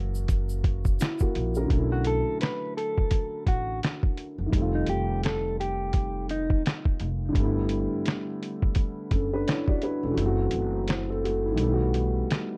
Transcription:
Already playing: upright bass F#1, upright piano E3 F#3 A#3 C#4 F#4
0.15 shaker
0.28 kick, closed hi-hat, shaker
0.49 shaker
0.64 kick, closed hi-hat
0.85 kick, shaker
1.00 upright piano E4, snare, closed hi-hat, shaker
1.19 upright piano A#3 F#4, kick, shaker
1.35 upright bass A#1, closed hi-hat
1.55 upright piano C#4 A#4, shaker
1.64 upright piano D3 F#3
1.70 upright bass B1, upright piano A3, kick, closed hi-hat
1.75 upright piano C#4 E4
1.92 clean electric guitar F#4
2.04 clean electric guitar A4, closed hi-hat
2.41 clean electric guitar B4, snare, closed hi-hat
2.77 clean electric guitar A4, closed hi-hat
2.98 kick
3.11 kick, closed hi-hat
3.47 upright bass A1, clean electric guitar F#4, kick, closed hi-hat
3.83 snare, closed hi-hat
4.03 kick
4.17 closed hi-hat
4.38 upright bass F#1
4.46 upright piano D#3 G3
4.53 upright bass F1, upright piano A3, kick, closed hi-hat
4.58 upright piano C4 F4
4.75 clean electric guitar D#4
4.86 upright bass F1, clean electric guitar G4, closed hi-hat
5.23 clean electric guitar A4, snare, closed hi-hat
5.60 clean electric guitar G4, closed hi-hat
5.93 kick, closed hi-hat
6.29 clean electric guitar D#4, closed hi-hat
6.50 kick
6.66 snare, closed hi-hat
6.85 kick
7.00 upright bass F1, closed hi-hat
7.29 upright piano D3 G3
7.35 upright bass G1, upright piano A3, kick, closed hi-hat
7.40 upright piano B3 E4
7.69 closed hi-hat
8.06 snare, closed hi-hat
8.43 closed hi-hat
8.62 kick
8.75 kick, closed hi-hat
9.11 upright bass F#1, upright piano C#4 A4, kick, closed hi-hat
9.33 upright piano D4 B4
9.48 upright piano E4 C#5, snare, closed hi-hat
9.68 upright piano F#4 D5, kick
9.82 upright piano D4 B4, closed hi-hat
10.03 upright bass E1, upright piano C#4 A4
10.11 upright piano E3 F#3
10.17 upright bass F#1, upright piano A3, closed hi-hat
10.22 upright piano C4 F#4
10.51 upright bass F#1, closed hi-hat
10.88 upright piano E4 C5, snare, closed hi-hat
11.10 upright piano C4 A4
11.24 upright piano A3 F#4, closed hi-hat
11.45 upright piano E4
11.52 upright piano D#3
11.56 upright bass B1, upright piano G3 A3, closed hi-hat
11.63 upright piano B3
11.67 upright piano E4
11.74 upright piano F#4
11.94 closed hi-hat
12.31 snare, closed hi-hat

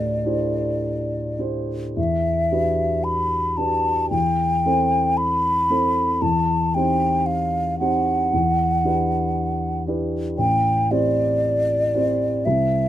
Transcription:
Already playing: grand piano A2 D4 E4 G4 C5, flute D5
0.25 grand piano D4 E4 G4 C5
1.39 grand piano D4 E4 G4 C5
1.96 grand piano E2, flute E5
2.51 grand piano D4 F#4 G4 B4
3.04 flute B5
3.57 grand piano D4 F#4 G4 B4, flute A5
4.10 grand piano E2, flute G5
4.65 grand piano C4 E4 A4 C5
5.17 flute B5
5.70 grand piano C4 E4 A4 C5
6.22 grand piano E2, flute A5
6.74 grand piano C4 D#4 G4 C5, flute G5
7.26 flute F5
7.80 grand piano C4 D#4 G4 C5, flute F#5
8.33 grand piano E2
8.85 grand piano D4 E4 G4 B4
9.87 grand piano D4 E4 G4 B4
10.38 grand piano A1, flute G5
10.91 grand piano C4 E4 G4 C5, flute D5
11.95 grand piano C4 E4 G4 C5
12.45 grand piano C2, flute E5

